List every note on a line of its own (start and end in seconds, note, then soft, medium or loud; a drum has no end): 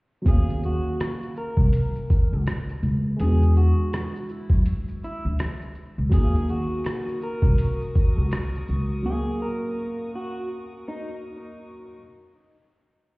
0.22 3.13 F#3 medium
0.22 3.15 A#3 medium
0.26 0.78 D#2 loud
0.26 3.16 C#4 medium
0.26 0.61 G#4 loud
0.26 kick loud
0.26 closed hi-hat medium
0.26 shaker medium
0.31 3.17 F5 medium
0.50 shaker soft
0.63 1.34 F#4 medium
0.63 shaker soft
1.00 cross-stick loud
1.00 closed hi-hat medium
1.00 shaker medium
1.23 shaker soft
1.36 2.43 A#4 medium
1.36 shaker soft
1.57 1.70 C2 medium
1.57 kick medium
1.57 shaker soft
1.73 closed hi-hat medium
1.73 shaker medium
1.95 shaker soft
2.10 kick loud
2.10 shaker soft
2.33 2.45 C#2 medium
2.46 cross-stick loud
2.46 closed hi-hat medium
2.46 shaker medium
2.69 shaker soft
2.82 3.14 C#2 medium
2.82 shaker soft
3.16 3.70 E2 loud
3.16 6.06 G#3 medium
3.16 6.08 B3 medium
3.16 closed hi-hat medium
3.16 shaker medium
3.21 6.09 D4 medium
3.21 6.11 F#4 medium
3.21 3.53 G#4 medium
3.42 shaker soft
3.56 4.30 F#4 medium
3.56 shaker soft
3.93 cross-stick loud
3.93 closed hi-hat medium
3.93 shaker medium
4.16 shaker soft
4.29 4.63 E4 medium
4.29 shaker soft
4.50 4.63 F#2 medium
4.50 kick medium
4.50 shaker soft
4.66 closed hi-hat medium
4.66 shaker medium
4.88 shaker soft
5.04 5.24 E4 medium
5.04 shaker soft
5.25 5.37 D2 medium
5.39 cross-stick loud
5.39 closed hi-hat medium
5.39 shaker medium
5.62 shaker soft
5.75 shaker soft
5.98 6.10 C#2 medium
6.09 6.63 D#2 loud
6.09 8.99 F#3 medium
6.09 9.01 A#3 medium
6.09 11.93 F#4 medium
6.09 11.94 A#4 medium
6.09 11.93 C#6 medium
6.09 11.93 D#6 medium
6.09 kick medium
6.09 closed hi-hat medium
6.09 shaker medium
6.14 9.02 C#4 medium
6.14 6.23 D#4 medium
6.14 6.46 G#4 loud
6.24 9.07 F5 medium
6.35 shaker soft
6.49 7.19 F#4 medium
6.49 shaker soft
6.84 finger snap medium
6.84 cross-stick loud
6.84 closed hi-hat medium
6.84 shaker medium
7.08 shaker soft
7.22 8.28 A#4 medium
7.22 shaker soft
7.42 7.56 C2 medium
7.42 kick medium
7.42 shaker soft
7.58 closed hi-hat medium
7.58 shaker medium
7.81 shaker soft
7.96 kick medium
7.96 shaker soft
8.18 8.30 C#2 medium
8.31 finger snap medium
8.31 cross-stick loud
8.31 closed hi-hat medium
8.31 shaker medium
8.55 shaker soft
8.68 9.00 C#2 medium
8.68 shaker soft
9.02 11.92 F#3 medium
9.02 11.93 A#3 medium
9.02 9.38 G#4 medium
9.07 11.95 C#4 medium
9.07 11.96 F5 medium
9.42 10.11 A#4 medium
10.16 10.48 F#4 medium
10.88 11.08 D#4 medium